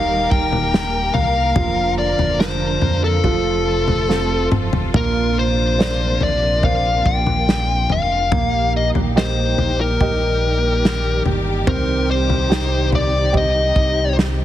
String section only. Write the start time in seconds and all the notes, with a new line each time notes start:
Already playing: D#3 G3 A#3 G4 A#4
1.55 D3 F3 F4
3.24 C3 A3 A4
4.94 C3 F3 A#3 D4
8.33 A#2 D#3 G3 D#4 G4
11.68 C3 D#4